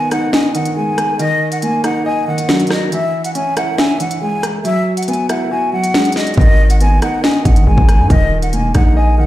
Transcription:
Already playing: grand piano D#3 B3
0.11 grand piano D#4, flute F#5, cross-stick, closed hi-hat
0.33 grand piano D#5, flute G#5, snare
0.55 grand piano D#3, flute F#5, closed hi-hat
0.65 closed hi-hat
0.76 grand piano G#3, flute G#5
0.98 cross-stick, closed hi-hat
1.19 grand piano D#3, flute D#5, closed hi-hat
1.52 flute F#5, closed hi-hat
1.62 grand piano A#3, flute G#5, closed hi-hat
1.84 grand piano D#4, flute F#5, cross-stick, closed hi-hat
2.06 grand piano D#5, flute G#5
2.27 grand piano D#3, flute F#5
2.38 closed hi-hat
2.49 grand piano F#3, snare
2.60 closed hi-hat
2.67 flute D#5, cross-stick, snare, closed hi-hat
2.74 closed hi-hat
2.92 grand piano E3, flute E5, closed hi-hat
3.24 flute F#5, closed hi-hat
3.35 grand piano C#4, flute G#5, closed hi-hat
3.57 grand piano E4, flute F#5, cross-stick, closed hi-hat
3.78 grand piano E5, flute G#5, snare
4.00 grand piano E3, flute F#5, closed hi-hat
4.11 closed hi-hat
4.22 grand piano G#3, flute G#5
4.43 cross-stick, closed hi-hat
4.65 grand piano F#3, flute E5, closed hi-hat
4.97 flute F#5, closed hi-hat
5.03 closed hi-hat
5.08 grand piano B3, flute G#5, closed hi-hat
5.13 closed hi-hat
5.29 grand piano E4, flute F#5, cross-stick, closed hi-hat
5.51 grand piano F#4, flute G#5
5.73 grand piano F#3, flute F#5
5.84 closed hi-hat
5.94 grand piano G#3, snare
6.05 closed hi-hat
6.12 flute D#5, snare, closed hi-hat
6.20 closed hi-hat
6.27 closed hi-hat
6.34 808-style bass G#1, grand piano D#3, flute D#5, kick, closed hi-hat
6.41 closed hi-hat
6.70 flute F#5, closed hi-hat
6.81 grand piano B3, flute G#5, closed hi-hat
7.02 grand piano D#4, flute F#5, cross-stick, closed hi-hat
7.24 grand piano D#5, flute G#5, snare
7.45 808-style bass G#1, grand piano D#3, flute F#5, kick, closed hi-hat
7.56 closed hi-hat
7.67 808-style bass G#1, grand piano G#3, flute G#5
7.78 808-style bass G#1, kick
7.89 cross-stick, closed hi-hat
7.99 808-style bass G#2
8.10 808-style bass D#1, grand piano D#3, flute D#5, kick, closed hi-hat
8.42 flute F#5, closed hi-hat
8.53 808-style bass E1, grand piano A#3, flute G#5, closed hi-hat
8.74 808-style bass A#1, grand piano D#4, flute F#5, kick, cross-stick, closed hi-hat
8.96 grand piano D#5, flute G#5
9.18 grand piano D#3, flute F#5

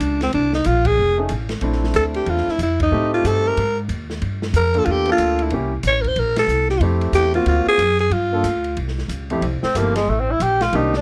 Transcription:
Already playing: alto saxophone D4
0.00 upright bass C#2, hi-hat pedal, ride
0.21 alto saxophone C4, snare, ride
0.33 upright bass C2, alto saxophone D4, ride
0.53 alto saxophone D#4, snare
0.64 upright bass A#1, alto saxophone F4, hi-hat pedal, ride
0.85 alto saxophone G#4, kick, ride
0.97 upright bass F1
1.18 grand piano A3 C#4 D#4 G#4
1.29 upright bass A1, hi-hat pedal, ride
1.49 snare, ride
1.61 upright bass A#1, grand piano A3 C4 D4 E4, ride
1.72 snare
1.84 snare
1.94 upright bass D2, alto saxophone A4, hi-hat pedal, ride
2.14 alto saxophone G4, ride
2.26 upright bass E2, alto saxophone F4, ride
2.37 snare
2.48 alto saxophone E4, muted upright bass stroke, snare
2.59 upright bass F2, hi-hat pedal, ride
2.63 alto saxophone E4
2.80 alto saxophone D#4, kick, ride
2.92 upright bass A2, grand piano A3 C4 D#4 G4
3.14 alto saxophone F4
3.24 upright bass G2, alto saxophone A4, hi-hat pedal, ride
3.47 alto saxophone A#4
3.57 upright bass G#2, ride
3.89 upright bass D#2, hi-hat pedal, ride
4.10 snare
4.22 upright bass G2, ride
4.42 snare
4.53 upright bass F2, alto saxophone A#4, hi-hat pedal, ride
4.74 grand piano A#3 D4 F4 A4, ride
4.78 alto saxophone A4
4.85 upright bass E2, alto saxophone F4, ride
4.91 alto saxophone G4
5.06 grand piano A#3 D4 F4 A4, ride
5.12 alto saxophone F4
5.18 upright bass D2, hi-hat pedal, ride
5.39 alto saxophone E4, ride
5.50 upright bass C2, grand piano A#3 C#4 E4 G4, ride
5.83 upright bass A1, hi-hat pedal, ride
5.87 alto saxophone C#5
6.01 alto saxophone A#4, kick, ride
6.08 alto saxophone C5
6.16 upright bass A#1, alto saxophone A#4, ride
6.36 alto saxophone A4, snare, ride
6.47 upright bass C2, hi-hat pedal
6.69 alto saxophone G4, snare
6.80 upright bass F2, grand piano A3 C4 E4 G4, ride
7.01 ride
7.12 upright bass E2, alto saxophone G4, hi-hat pedal, ride
7.34 grand piano A#3 C4 F4 F#4, alto saxophone F4, ride
7.46 upright bass D2, alto saxophone F4, ride
7.68 alto saxophone G#4
7.78 upright bass F#2, hi-hat pedal, ride
7.99 alto saxophone G#4, ride
8.10 upright bass G2, alto saxophone F4, ride
8.33 grand piano A#3 D4 F4 A4
8.43 upright bass D2, hi-hat pedal, ride
8.64 ride
8.77 upright bass C2, ride
8.88 snare
8.98 snare
9.08 upright bass C#2, hi-hat pedal, ride
9.30 grand piano F2 A3 C4 E4 G4, ride
9.41 upright bass C2, ride
9.63 tenor saxophone C4, muted upright bass stroke, snare
9.75 upright bass G1, grand piano F3 A3 C4 E4 G4, tenor saxophone A#3, hi-hat pedal, ride
9.96 tenor saxophone G#3, snare, ride
10.08 upright bass A1, tenor saxophone A3
10.20 tenor saxophone C4
10.31 tenor saxophone E4
10.40 upright bass A#1, tenor saxophone G4, hi-hat pedal, ride
10.61 tenor saxophone F4, snare, ride
10.73 upright bass C2, grand piano D#3 A#3 C4 D4 G4, tenor saxophone D#4, ride
10.93 tenor saxophone D4, snare

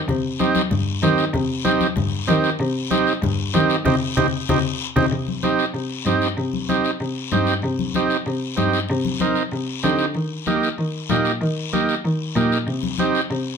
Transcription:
0.08 cello C3, low conga, long guiro
0.39 transistor combo organ C4 D#4 G4, high conga, short guiro
0.55 high conga, short guiro
0.71 cello G2, low conga, long guiro
1.02 cello D#3, transistor combo organ C4 D#4 G4, high conga, short guiro
1.18 short guiro
1.33 cello C3, low conga, long guiro
1.65 transistor combo organ C4 D#4 G4, high conga, short guiro
1.81 high conga, short guiro
1.96 cello G2, low conga, long guiro
2.27 cello D#3, transistor combo organ C4 D#4 G4, high conga, short guiro
2.44 short guiro
2.59 cello C3, long guiro
2.91 transistor combo organ C4 D#4 G4, high conga, short guiro
3.07 short guiro
3.22 cello G2, low conga, long guiro
3.54 cello D#3, transistor combo organ C4 D#4 G4, high conga, short guiro
3.70 short guiro
3.85 cello C3, transistor combo organ C4 D#4 G4, low conga, long guiro
4.17 cello C3, transistor combo organ C4 D#4 G4, low conga, long guiro
4.49 cello C3, transistor combo organ C4 D#4 G4, low conga, long guiro
4.96 cello C3, transistor combo organ C4 D#4 G4, low conga, long guiro
5.12 cello C3, long guiro
5.28 high conga
5.43 transistor combo organ C4 D#4 G4, high conga, short guiro
5.59 short guiro
5.74 cello C3, long guiro
6.05 cello G2, transistor combo organ C4 D#4 G4, high conga, short guiro
6.22 short guiro
6.37 cello C3, long guiro
6.53 high conga
6.69 transistor combo organ C4 D#4 G4, high conga, short guiro
6.84 short guiro
7.00 cello C3, long guiro
7.32 cello G2, transistor combo organ C4 D#4 G4, high conga, short guiro
7.47 short guiro
7.62 cello C3, long guiro
7.79 high conga
7.94 transistor combo organ C4 D#4 G4, high conga, short guiro
8.10 short guiro
8.26 cello C3, long guiro
8.57 cello G2, transistor combo organ C4 D#4 G4, high conga, short guiro
8.73 short guiro
8.89 cello C3, long guiro
9.05 high conga
9.20 transistor combo organ C4 D#4 A#4, high conga, short guiro
9.36 short guiro
9.51 cello C3, long guiro
9.83 cello D3, transistor combo organ C4 D#4 G4, high conga, short guiro
9.99 short guiro
10.14 cello D#3, long guiro
10.46 transistor combo organ A#3 D#4 G4, high conga, short guiro
10.63 short guiro
10.78 cello D#3, long guiro
11.09 cello A#2, transistor combo organ A#3 D#4 G4, high conga, short guiro
11.25 short guiro
11.41 cello D#3, long guiro
11.73 transistor combo organ A#3 D#4 G4, high conga, short guiro
11.89 short guiro
12.05 cello D#3, long guiro
12.36 cello A#2, transistor combo organ A#3 D#4 G4, high conga, short guiro
12.52 short guiro
12.67 cello C3, long guiro
12.83 high conga
12.98 transistor combo organ C4 D#4 G4, high conga, short guiro
13.15 short guiro
13.30 cello C3, long guiro

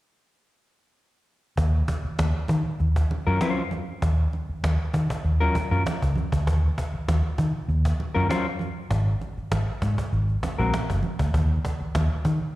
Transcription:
1.57 fingered electric bass D#2, cajon bass
1.88 cajon bass, muted conga
2.05 muted fingered electric bass stroke
2.19 fingered electric bass D#2, cajon slap, high conga
2.48 fingered electric bass D#3, cajon bass, cajon slap, muted conga
2.80 fingered electric bass D#2, cajon slap
2.96 cajon bass, cajon slap
3.11 muted conga
3.27 fingered electric bass F#2, clean electric guitar F#3 C#4 F4 A#4, cajon slap
3.41 clean electric guitar F#3 C#4 F4 C5, cajon slap, high conga
3.71 cajon slap, high conga
4.02 fingered electric bass D#2, cajon bass
4.33 cajon slap, muted conga
4.49 muted fingered electric bass stroke
4.64 fingered electric bass D#2, cajon slap, high conga
4.94 fingered electric bass D#3, cajon bass, cajon slap, muted conga
5.10 cajon bass
5.24 fingered electric bass D#2, cajon slap
5.40 clean electric guitar F#3 C#4 F4 A#4, cajon slap
5.55 cajon bass, muted conga, low conga
5.71 fingered electric bass F#2, clean electric guitar F#3 C#4 F4 A#4, cajon slap
5.85 muted fingered electric bass stroke, cajon slap, high conga
6.02 fingered electric bass C#2, cajon bass
6.16 cajon slap, high conga
6.32 fingered electric bass D2, cajon bass
6.47 fingered electric bass D#2, cajon bass
6.78 cajon bass
6.94 muted fingered electric bass stroke
7.08 fingered electric bass D#2, cajon slap, high conga
7.38 fingered electric bass D#3, cajon bass, cajon slap, muted conga
7.68 fingered electric bass D#2, cajon slap
7.85 cajon bass, cajon slap
8.00 muted conga
8.14 fingered electric bass F#2, clean electric guitar F#3 C#4 F4 A#4, cajon slap
8.29 clean electric guitar F#3 C#4 F4 C5, cajon slap, high conga
8.59 cajon slap, high conga
8.91 fingered electric bass G#1, cajon bass
9.21 cajon slap, muted conga
9.37 muted fingered electric bass stroke, cajon slap
9.51 fingered electric bass G#1, cajon slap, high conga
9.82 fingered electric bass G#2, cajon bass, cajon slap, muted conga
9.98 cajon bass
10.13 fingered electric bass G#1, cajon slap
10.29 cajon slap
10.43 cajon bass, muted conga, low conga
10.58 fingered electric bass A#1, clean electric guitar G#3 C4 F#4 A#4, cajon slap
10.73 muted fingered electric bass stroke, cajon slap, high conga
10.90 fingered electric bass F#1, cajon bass
11.03 cajon slap, high conga
11.19 fingered electric bass D2, cajon bass
11.34 fingered electric bass D#2, cajon bass
11.65 cajon bass, muted conga
11.81 muted fingered electric bass stroke
11.95 fingered electric bass D#2, cajon slap, high conga
12.25 fingered electric bass D#3, cajon bass, cajon slap, muted conga

